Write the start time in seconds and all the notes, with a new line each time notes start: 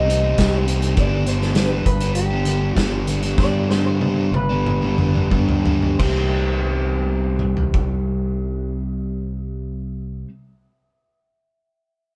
Already playing: C2 D#5
0.05 C3 G3 C4 D#4
0.10 closed hi-hat
0.21 G3 C4 D#4
0.37 C2 C3 G3 C4 D#4, kick, snare, closed hi-hat
0.66 C3 G3 C4 D#4, closed hi-hat
0.81 G3 C4 D#4, closed hi-hat
0.95 G1 G2 D3 G3 B3 D4, kick, closed hi-hat
1.00 D5
1.25 D3 G3 B3 D4 C5, closed hi-hat
1.42 snare
1.54 G2 D3 G3 B3 D4, snare, closed hi-hat
1.59 B4
1.71 G3 B3 D4
1.86 G1 B4, muted overdriven electric guitar stroke, kick, closed hi-hat
2.01 G3 B3 D4, closed hi-hat
2.15 G4, closed hi-hat
2.30 G3 B3 D4
2.45 D3 G3 B3 D4, closed hi-hat
2.60 G3 B3 D4
2.76 G1 G2 D3 G3 B3 D4 F4, kick, snare, closed hi-hat
3.07 D3 G3 B3 D4, closed hi-hat
3.23 G3 B3 D4, closed hi-hat
3.38 G2 D3 G3 B3 D4 D5, kick, snare
3.70 D3 G3 B3 D4 C5, snare
3.87 C5
4.00 G2 D3 G3 B3 D4, high tom
4.17 G3 B3 D4
4.31 G1, muted overdriven electric guitar stroke, high tom
4.36 B4
4.49 G3 B3 D4
4.66 mid tom
4.81 G3 B3 D4, mid tom
4.97 D3 G3 B3 D4, mid tom
5.14 G3 B3 D4, mid tom
5.30 G2 D3 G3 B3 D4, kick, mid tom
5.49 floor tom
5.63 D3 G3 B3 D4, floor tom
5.80 G3 B3 D4, floor tom
5.99 C2 C3 G3 C4 D#4 G4 C5, kick, crash
7.39 mid tom
7.57 floor tom
7.74 kick